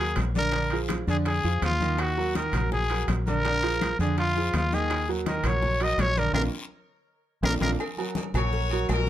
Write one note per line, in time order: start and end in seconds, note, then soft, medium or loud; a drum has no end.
0.00 0.14 D#2 medium
0.00 0.29 F#3 medium
0.00 0.29 F#4 medium
0.00 0.16 G#4 loud
0.00 0.30 A#4 medium
0.16 1.02 A#1 medium
0.16 high bongo soft
0.16 low bongo medium
0.16 high conga medium
0.16 high timbale medium
0.16 low timbale medium
0.16 short guiro medium
0.16 claves medium
0.35 0.50 D3 medium
0.35 0.51 D4 medium
0.35 0.79 A#4 loud
0.35 0.51 D5 medium
0.35 high bongo soft
0.35 high conga medium
0.35 short guiro medium
0.52 0.69 D3 medium
0.52 0.69 D4 medium
0.52 0.69 D5 medium
0.52 high bongo medium
0.52 high conga soft
0.52 high timbale medium
0.52 long guiro medium
0.70 1.02 F3 medium
0.70 1.02 F4 medium
0.70 1.02 G#4 medium
0.70 high conga soft
0.70 high timbale medium
0.89 high bongo medium
0.89 high conga medium
0.89 high timbale medium
0.89 short guiro medium
0.89 claves medium
1.07 1.42 F2 medium
1.07 1.38 D3 medium
1.07 1.38 D4 medium
1.07 1.17 G#4 medium
1.07 1.38 D5 medium
1.07 high bongo soft
1.07 high conga soft
1.07 short guiro medium
1.25 1.61 G#4 medium
1.25 high bongo medium
1.25 high conga soft
1.25 high timbale medium
1.25 long guiro medium
1.44 1.61 F2 medium
1.44 1.74 F3 medium
1.44 1.74 F4 medium
1.44 1.75 G#4 medium
1.44 high bongo soft
1.44 high conga soft
1.62 2.48 D#2 medium
1.62 2.02 F4 loud
1.62 high bongo soft
1.62 low bongo medium
1.62 high conga medium
1.62 high timbale medium
1.62 short guiro medium
1.62 claves medium
1.80 2.11 D#3 medium
1.80 2.11 D#4 medium
1.80 2.12 D#5 medium
1.80 high bongo soft
1.80 high conga medium
1.80 short guiro medium
1.98 2.36 F#4 loud
1.98 high bongo medium
1.98 high timbale medium
1.98 long guiro medium
1.98 claves medium
2.17 2.32 F#3 medium
2.17 2.33 F#4 medium
2.17 2.33 A#4 medium
2.17 high conga soft
2.35 2.50 D#3 medium
2.35 2.50 D#4 medium
2.35 2.70 A#4 medium
2.35 2.50 D#5 medium
2.35 high bongo medium
2.35 high conga medium
2.35 high timbale medium
2.35 short guiro medium
2.53 3.04 A#1 medium
2.53 2.84 F#3 medium
2.53 2.84 F#4 medium
2.53 2.84 A#4 medium
2.53 high bongo soft
2.53 high conga soft
2.53 low conga medium
2.53 high timbale medium
2.53 short guiro medium
2.53 claves medium
2.72 3.06 G#4 loud
2.72 high bongo medium
2.72 high conga soft
2.72 low conga medium
2.72 long guiro medium
2.90 3.20 F#3 medium
2.90 3.21 F#4 medium
2.90 3.21 A#4 medium
2.90 high bongo soft
2.90 high conga soft
2.90 high timbale medium
3.08 3.93 A#1 medium
3.08 high bongo soft
3.08 low bongo medium
3.08 high conga medium
3.08 high timbale medium
3.08 short guiro medium
3.08 claves medium
3.27 3.42 D3 medium
3.27 3.42 D4 medium
3.27 3.96 A#4 loud
3.27 3.43 D5 medium
3.27 high bongo soft
3.27 high conga medium
3.27 short guiro medium
3.45 3.60 D3 medium
3.45 3.60 D4 medium
3.45 3.60 D5 medium
3.45 high bongo medium
3.45 high conga soft
3.45 high timbale medium
3.45 long guiro medium
3.63 3.93 F3 medium
3.63 3.93 F4 medium
3.63 3.93 G#4 medium
3.63 high conga soft
3.63 high timbale medium
3.81 high bongo medium
3.81 high conga medium
3.81 high timbale medium
3.81 short guiro medium
3.81 claves medium
3.99 4.50 F2 medium
3.99 4.30 D3 medium
3.99 4.30 D4 medium
3.99 4.17 G#4 medium
3.99 4.30 D5 medium
3.99 high bongo soft
3.99 high conga soft
3.99 short guiro medium
4.18 4.52 F4 loud
4.18 high bongo medium
4.18 high conga soft
4.18 high timbale medium
4.18 long guiro medium
4.36 4.66 F3 medium
4.36 4.66 F4 medium
4.36 4.66 G#4 medium
4.36 high bongo soft
4.36 high conga soft
4.54 5.39 D#2 medium
4.54 4.75 F4 loud
4.54 high bongo soft
4.54 low bongo medium
4.54 high conga medium
4.54 high timbale medium
4.54 short guiro medium
4.54 claves medium
4.72 5.02 D#3 medium
4.72 5.02 D#4 medium
4.72 5.09 G#4 loud
4.72 5.02 D#5 medium
4.72 high bongo soft
4.72 high conga medium
4.72 short guiro medium
4.90 high bongo medium
4.90 high timbale medium
4.90 long guiro medium
4.90 claves medium
5.09 5.23 F#3 medium
5.09 5.23 F#4 medium
5.09 5.24 A#4 medium
5.09 high conga soft
5.26 5.42 D#3 medium
5.26 5.42 D#4 medium
5.26 5.48 A#4 medium
5.26 5.42 D#5 medium
5.26 high bongo medium
5.26 high conga medium
5.26 high timbale medium
5.26 short guiro medium
5.44 5.95 A#1 loud
5.44 5.74 F#3 medium
5.44 5.75 F#4 medium
5.44 5.75 A#4 medium
5.44 5.84 C#5 loud
5.44 high bongo soft
5.44 high conga soft
5.44 low conga medium
5.44 high timbale loud
5.44 short guiro medium
5.44 claves medium
5.62 high bongo medium
5.62 high conga soft
5.62 low conga medium
5.62 long guiro medium
5.80 6.10 F#3 medium
5.80 6.11 F#4 medium
5.80 6.11 A#4 medium
5.80 6.02 D#5 loud
5.80 high bongo soft
5.80 high conga soft
5.80 high timbale medium
5.98 6.32 A#1 medium
5.98 6.20 C#5 loud
5.98 high bongo soft
5.98 low bongo medium
5.98 high conga medium
5.98 high timbale medium
5.98 low timbale medium
5.98 short guiro medium
5.98 claves medium
6.16 6.32 D3 medium
6.16 6.32 D4 medium
6.16 6.33 A#4 loud
6.16 6.32 D5 medium
6.16 high bongo soft
6.16 high conga medium
6.16 short guiro medium
6.33 6.48 A#1 medium
6.33 6.46 A#3 medium
6.33 6.46 D4 medium
6.33 6.46 F4 medium
6.33 6.43 A#4 medium
6.33 low bongo loud
6.33 high conga medium
6.33 high timbale loud
6.33 long guiro loud
6.33 claves loud
7.42 7.57 A#1 medium
7.42 7.55 A#3 medium
7.42 7.55 D4 medium
7.42 7.55 F4 medium
7.42 7.53 A#4 loud
7.42 low bongo medium
7.42 high conga medium
7.42 high timbale loud
7.42 long guiro medium
7.42 claves medium
7.61 7.75 A#1 medium
7.61 7.73 A#3 medium
7.61 7.73 D4 medium
7.61 7.73 F4 medium
7.61 7.71 A#4 medium
7.61 low bongo loud
7.61 high conga medium
7.61 high timbale medium
7.61 long guiro medium
7.61 claves medium
7.79 cowbell loud
7.79 high conga soft
7.79 low agogo loud
7.79 long guiro medium
7.79 claves medium
7.97 8.28 F#3 medium
7.97 8.28 F#4 medium
7.97 8.29 A#4 medium
7.97 high conga soft
7.97 low agogo medium
8.15 cowbell medium
8.15 high conga loud
8.15 low timbale medium
8.15 low agogo medium
8.15 short guiro medium
8.34 8.85 A#1 loud
8.34 8.65 F#3 medium
8.34 8.90 F#4 medium
8.34 8.65 F#4 medium
8.34 8.91 A#4 medium
8.34 8.65 A#4 medium
8.34 8.86 C#5 loud
8.34 cowbell medium
8.34 high conga soft
8.34 low conga medium
8.34 low agogo loud
8.34 short guiro medium
8.34 claves medium
8.53 cowbell medium
8.53 high conga soft
8.53 long guiro medium
8.71 9.02 F#3 medium
8.71 9.02 F#4 medium
8.71 9.02 A#4 medium
8.71 high conga soft
8.71 low agogo medium
8.89 9.09 A#1 medium
8.89 9.09 C#4 medium
8.89 9.09 F#4 medium
8.89 9.09 A#4 loud
8.89 cowbell medium
8.89 high conga medium
8.89 low timbale medium
8.89 low agogo loud
8.89 short guiro medium
8.89 claves medium